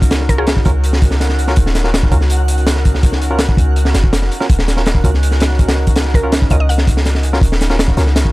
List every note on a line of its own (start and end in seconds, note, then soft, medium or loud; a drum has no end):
0.00 0.64 C#2 loud
0.00 8.32 F#5 medium
0.00 kick loud
0.00 closed hi-hat medium
0.11 0.63 C#4 loud
0.11 0.63 D#4 medium
0.11 0.63 F#4 medium
0.11 0.63 A#4 loud
0.11 snare loud
0.11 closed hi-hat medium
0.21 snare soft
0.29 0.36 A#4 medium
0.29 kick medium
0.29 closed hi-hat medium
0.38 0.46 C#4 medium
0.38 0.45 F4 medium
0.38 0.45 F#4 medium
0.38 0.75 G#4 medium
0.38 0.45 A#4 loud
0.47 snare loud
0.47 closed hi-hat medium
0.57 kick medium
0.65 1.56 C#2 medium
0.65 0.70 C#4 medium
0.65 0.70 F4 medium
0.65 0.70 F#4 medium
0.65 0.70 A#4 medium
0.65 kick loud
0.65 closed hi-hat medium
0.84 closed hi-hat medium
0.93 snare medium
1.02 1.55 C#4 medium
1.02 1.55 D#4 medium
1.02 1.55 F#4 medium
1.02 1.55 A#4 loud
1.02 kick loud
1.02 closed hi-hat medium
1.11 snare medium
1.20 snare soft
1.20 closed hi-hat medium
1.29 snare soft
1.39 closed hi-hat medium
1.47 1.53 C#4 medium
1.47 1.53 F4 medium
1.47 1.53 F#4 medium
1.47 1.53 A#4 loud
1.47 snare soft
1.56 2.11 D#1 medium
1.56 2.10 C#4 loud
1.56 2.10 D#4 medium
1.56 2.10 F#4 medium
1.56 2.10 A#4 loud
1.56 kick loud
1.56 closed hi-hat medium
1.66 snare medium
1.75 snare medium
1.75 closed hi-hat medium
1.84 1.89 C#4 medium
1.84 1.89 F4 medium
1.84 1.89 F#4 medium
1.84 1.89 A#4 medium
1.84 snare soft
1.94 snare loud
1.94 closed hi-hat medium
2.03 kick loud
2.12 3.57 C#2 medium
2.12 2.16 C#4 medium
2.12 2.16 F4 medium
2.12 2.17 F#4 medium
2.12 2.17 A#4 medium
2.12 kick loud
2.12 closed hi-hat medium
2.21 snare soft
2.30 closed hi-hat loud
2.48 3.01 C#4 medium
2.48 3.01 D#4 medium
2.48 3.01 F#4 medium
2.48 3.01 A#4 loud
2.48 closed hi-hat medium
2.58 closed hi-hat soft
2.67 snare loud
2.67 closed hi-hat medium
2.76 snare soft
2.85 kick medium
2.85 closed hi-hat medium
2.94 snare soft
3.03 3.56 C#4 loud
3.03 3.56 D#4 medium
3.03 3.56 F#4 medium
3.03 3.56 A#4 loud
3.03 kick loud
3.03 closed hi-hat medium
3.12 snare medium
3.22 closed hi-hat medium
3.31 3.38 C#4 medium
3.31 3.38 F4 medium
3.31 3.38 F#4 medium
3.31 3.38 A#4 loud
3.39 snare loud
3.39 closed hi-hat medium
3.49 kick loud
3.57 3.94 C#2 loud
3.57 kick loud
3.57 closed hi-hat medium
3.76 closed hi-hat medium
3.85 snare medium
3.94 4.30 F1 medium
3.94 snare medium
3.94 closed hi-hat medium
4.04 kick medium
4.13 snare loud
4.13 closed hi-hat medium
4.22 snare soft
4.32 closed hi-hat medium
4.40 4.45 C#4 medium
4.40 4.45 F4 medium
4.40 4.45 F#4 medium
4.40 4.45 A#4 loud
4.40 snare soft
4.50 5.03 D#1 medium
4.50 5.02 C#4 loud
4.50 5.02 D#4 medium
4.50 5.02 F#4 medium
4.50 5.02 A#4 loud
4.50 kick loud
4.50 closed hi-hat medium
4.59 snare medium
4.68 snare medium
4.68 closed hi-hat medium
4.77 4.82 C#4 medium
4.77 4.82 F4 medium
4.77 4.82 F#4 medium
4.77 4.82 A#4 medium
4.77 snare soft
4.86 snare loud
4.86 closed hi-hat medium
4.95 kick medium
5.04 6.49 C#2 loud
5.04 5.09 C#4 medium
5.04 5.09 F4 medium
5.04 5.09 F#4 medium
5.04 5.09 A#4 medium
5.04 kick medium
5.04 closed hi-hat medium
5.14 snare soft
5.23 closed hi-hat medium
5.31 snare soft
5.40 5.94 C#4 loud
5.40 5.94 D#4 medium
5.40 5.94 F#4 medium
5.40 5.94 A#4 loud
5.40 snare loud
5.40 closed hi-hat medium
5.50 snare soft
5.59 kick medium
5.59 closed hi-hat medium
5.68 snare loud
5.68 closed hi-hat medium
5.77 snare soft
5.87 kick medium
5.87 closed hi-hat medium
5.96 6.49 C#4 medium
5.96 6.49 D#4 medium
5.96 6.49 F#4 medium
5.96 6.49 A#4 loud
5.96 snare loud
5.96 closed hi-hat medium
6.05 snare soft
6.14 6.22 A#4 medium
6.14 kick loud
6.14 closed hi-hat medium
6.23 6.31 C#4 medium
6.23 6.31 F4 medium
6.23 6.31 F#4 medium
6.23 6.31 A#4 loud
6.32 snare loud
6.32 closed hi-hat medium
6.42 kick loud
6.50 7.41 C#2 loud
6.50 6.56 C#4 medium
6.50 6.56 F4 medium
6.50 6.56 F#4 medium
6.50 6.56 A#4 medium
6.50 6.57 D#5 medium
6.50 kick loud
6.50 closed hi-hat medium
6.60 6.66 D#5 medium
6.69 6.97 F#5 medium
6.69 closed hi-hat medium
6.78 snare medium
6.87 7.40 C#4 medium
6.87 7.40 D#4 medium
6.87 7.40 F#4 medium
6.87 7.40 A#4 loud
6.87 kick loud
6.87 closed hi-hat medium
6.97 snare medium
7.05 snare medium
7.05 closed hi-hat medium
7.15 snare soft
7.23 closed hi-hat medium
7.33 7.38 C#4 medium
7.33 7.38 F4 medium
7.33 7.38 F#4 medium
7.33 7.38 A#4 loud
7.33 snare soft
7.41 7.95 D#1 medium
7.41 7.95 C#4 loud
7.41 7.95 D#4 medium
7.41 7.95 F#4 medium
7.41 7.95 A#4 loud
7.41 kick loud
7.41 closed hi-hat medium
7.52 snare medium
7.61 snare medium
7.61 closed hi-hat medium
7.70 7.74 C#4 medium
7.70 7.74 F4 medium
7.70 7.74 F#4 medium
7.70 7.74 A#4 medium
7.70 snare soft
7.79 snare loud
7.79 closed hi-hat medium
7.88 kick loud
7.97 8.32 C#2 medium
7.97 8.02 C#4 medium
7.97 8.02 F4 medium
7.97 8.02 F#4 medium
7.97 8.02 A#4 medium
7.97 snare medium
7.97 closed hi-hat medium
8.07 snare soft
8.16 snare loud
8.16 closed hi-hat medium
8.25 kick medium